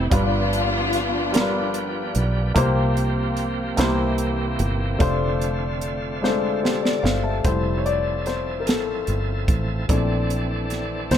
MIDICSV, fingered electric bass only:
0, 0, Header, 1, 2, 480
1, 0, Start_track
1, 0, Key_signature, -1, "major"
1, 0, Tempo, 815217
1, 67, Time_signature, 6, 3, 24, 8
1, 6582, End_track
2, 0, Start_track
2, 0, Title_t, "Fingered electric bass"
2, 0, Program_c, 0, 33
2, 69, Note_on_c, 0, 31, 97
2, 1244, Note_off_c, 0, 31, 0
2, 1271, Note_on_c, 0, 35, 84
2, 1490, Note_off_c, 0, 35, 0
2, 1507, Note_on_c, 0, 36, 103
2, 2204, Note_off_c, 0, 36, 0
2, 2227, Note_on_c, 0, 36, 92
2, 2683, Note_off_c, 0, 36, 0
2, 2707, Note_on_c, 0, 31, 91
2, 2927, Note_off_c, 0, 31, 0
2, 2946, Note_on_c, 0, 29, 88
2, 4123, Note_off_c, 0, 29, 0
2, 4145, Note_on_c, 0, 31, 79
2, 4366, Note_off_c, 0, 31, 0
2, 4384, Note_on_c, 0, 29, 94
2, 5106, Note_off_c, 0, 29, 0
2, 5106, Note_on_c, 0, 33, 73
2, 5326, Note_off_c, 0, 33, 0
2, 5346, Note_on_c, 0, 31, 70
2, 5567, Note_off_c, 0, 31, 0
2, 5584, Note_on_c, 0, 33, 80
2, 5805, Note_off_c, 0, 33, 0
2, 5825, Note_on_c, 0, 34, 95
2, 6521, Note_off_c, 0, 34, 0
2, 6542, Note_on_c, 0, 38, 72
2, 6582, Note_off_c, 0, 38, 0
2, 6582, End_track
0, 0, End_of_file